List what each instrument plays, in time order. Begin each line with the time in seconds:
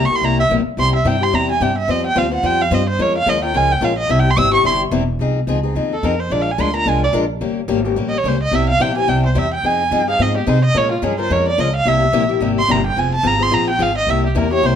0.05 erhu C#6
0.10 steel-string acoustic guitar A#3 E4 G4, muted upright bass stroke
0.15 erhu C6
0.21 upright bass C2, steel-string acoustic guitar C3 G3 A#3 E4 G4, erhu A#5
0.40 erhu E5
0.49 upright bass A#1, steel-string acoustic guitar C3 G3 A#3 E4 G4
0.65 muted upright bass stroke
0.77 upright bass C2, steel-string acoustic guitar C3 G3 C4 E4 G4, erhu C6
0.96 erhu E5
1.05 upright bass G2, steel-string acoustic guitar C3 G3 C4 E4 G4, erhu G5
1.21 steel-string acoustic guitar C4 E4 G4, erhu C6
1.33 upright bass E2, steel-string acoustic guitar C3 G3 C4 E4 G4, erhu A#5
1.51 erhu G#5
1.61 upright bass G2, steel-string acoustic guitar C3 G3 C4 E4 G4, erhu G5
1.78 erhu E5
1.88 upright bass F2, steel-string acoustic guitar F3 G3 C4 F4 C5, erhu D#5
2.06 erhu G5
2.15 upright bass D#2, steel-string acoustic guitar F3 G3 C4 F4 C5, erhu F5
2.31 steel-string acoustic guitar C4 F4 C5, erhu F#5
2.43 upright bass F2, steel-string acoustic guitar F3 G3 C4 F4 C5, erhu G5
2.62 erhu F5
2.71 upright bass G2, steel-string acoustic guitar F3 G3 C4 F4 C5, erhu D#5
2.89 erhu C5
2.99 upright bass F2, steel-string acoustic guitar F3 G#3 C#4 F4 A#4, erhu C#5
3.18 erhu F5
3.26 upright bass D#2, steel-string acoustic guitar F3 G#3 C#4 F4 A#4, erhu D#5
3.43 steel-string acoustic guitar C#4 F4 A#4, erhu G5
3.54 upright bass C#2, steel-string acoustic guitar F3 G#3 C#4 F4 A#4, erhu G#5
3.71 erhu G5
3.81 upright bass A#1, steel-string acoustic guitar F3 G#3 C#4 F4 A#4, erhu F5
3.98 erhu D#5
4.09 upright bass C2, steel-string acoustic guitar C3 G3 C4 E4 G4, erhu E5
4.20 erhu G5
4.30 erhu C6
4.36 upright bass G#1, steel-string acoustic guitar C3 G3 C4 E4 G4, erhu E6
4.51 steel-string acoustic guitar C4 E4 G4, erhu C#6
4.63 upright bass G1, steel-string acoustic guitar C3 G3 C4 E4 G4, erhu C6
4.91 upright bass E1, steel-string acoustic guitar C3 G3 C4 E4 G4
5.19 upright bass C2, steel-string acoustic guitar F3 C4 D#4 G#4
5.47 upright bass C#2, steel-string acoustic guitar F3 C4 D#4 G#4
5.63 steel-string acoustic guitar C4 D#4 G#4
5.75 upright bass D#2, steel-string acoustic guitar F3 C4 D#4 G#4
5.93 erhu A4
6.03 upright bass F2, steel-string acoustic guitar F3 C4 D#4 G#4, erhu A#4
6.20 erhu C5
6.30 upright bass A#1, steel-string acoustic guitar F3 G#3 D4 F4 A#4, erhu D5
6.42 erhu F5
6.51 erhu G#5
6.58 upright bass D2, steel-string acoustic guitar F3 G#3 D4 F4 A#4, erhu C6
6.74 steel-string acoustic guitar D4 F4 A#4, erhu A#5
6.86 upright bass C2, steel-string acoustic guitar F3 G#3 D4 F4 A#4, erhu G#5
7.04 erhu D5
7.13 upright bass A#1, steel-string acoustic guitar F3 G#3 D4 F4 A#4
7.41 upright bass G1, steel-string acoustic guitar G3 A#3 C#4 G4
7.68 upright bass G#1, steel-string acoustic guitar G3 A#3 C#4 G4
7.85 steel-string acoustic guitar A#3 C#4 G4
7.96 upright bass A#1, steel-string acoustic guitar G3 A#3 C#4 G4
8.09 erhu D#5
8.18 erhu C#5
8.24 upright bass C#2, steel-string acoustic guitar G3 A#3 C#4 G4, erhu C5
8.43 erhu D#5
8.51 upright bass C2, steel-string acoustic guitar C3 G3 C4 E4 G4, erhu E5
8.69 erhu F5
8.79 upright bass A#1, steel-string acoustic guitar C3 G3 C4 E4 G4, erhu G5
8.96 steel-string acoustic guitar C4 E4 G4, erhu G#5
9.07 upright bass C2, steel-string acoustic guitar C3 G3 C4 E4 G4, erhu G5
9.26 erhu C5
9.35 upright bass E2, steel-string acoustic guitar C3 G3 C4 E4 G4, erhu E5
9.54 erhu G5
9.63 upright bass F2, steel-string acoustic guitar F3 C4 D#4 G#4, erhu G#5
9.91 upright bass G2, steel-string acoustic guitar F3 C4 D#4 G#4
10.08 steel-string acoustic guitar C4 D#4 G#4, erhu F5
10.19 upright bass G#2, steel-string acoustic guitar F3 C4 D#4 G#4, erhu D#5
10.37 erhu G4
10.46 upright bass C3, steel-string acoustic guitar F3 C4 D#4 G#4, erhu C5
10.65 erhu D#5
10.74 upright bass A#2, steel-string acoustic guitar F3 G#3 C#4 F4 A#4, erhu C#5
10.92 erhu F4
11.02 upright bass G2, steel-string acoustic guitar F3 G#3 C#4 F4 A#4, erhu G#4
11.19 steel-string acoustic guitar C#4 F4 A#4, erhu C5
11.30 upright bass F2, steel-string acoustic guitar F3 G#3 C#4 F4 A#4, erhu C#5
11.48 erhu D5
11.58 upright bass C#2, steel-string acoustic guitar F3 G#3 C#4 F4 A#4, erhu D#5
11.76 erhu F5
11.85 upright bass C2, steel-string acoustic guitar C3 G3 A#3 E4 G4, erhu E5
12.13 upright bass A#1, steel-string acoustic guitar C3 G3 A#3 E4 G4
12.29 steel-string acoustic guitar A#3 E4 G4
12.40 upright bass G#1, steel-string acoustic guitar C3 G3 A#3 E4 G4
12.59 erhu C6
12.69 upright bass G1, steel-string acoustic guitar C3 G3 A#3 E4 G4, erhu A#5
12.87 erhu G5
12.96 upright bass F1, steel-string acoustic guitar F3 C4 F4 G#4, erhu G#5
13.15 erhu A5
13.23 upright bass G#1, steel-string acoustic guitar F3 C4 F4 G#4, erhu A#5
13.39 steel-string acoustic guitar C4 F4 G#4, erhu C6
13.51 upright bass A#1, steel-string acoustic guitar F3 C4 F4 G#4, erhu A#5
13.70 erhu G5
13.79 upright bass G#1, steel-string acoustic guitar F3 C4 F4 G#4, erhu F5
13.98 erhu D#5
14.07 upright bass C2, steel-string acoustic guitar C3 G3 A#3 E4 G4, erhu E5
14.26 erhu G4
14.35 upright bass E2, steel-string acoustic guitar C3 G3 A#3 E4 G4, erhu A#4
14.51 steel-string acoustic guitar A#3 E4 G4, erhu C#5
14.63 upright bass C2, steel-string acoustic guitar C3 G3 A#3 E4 G4, erhu C5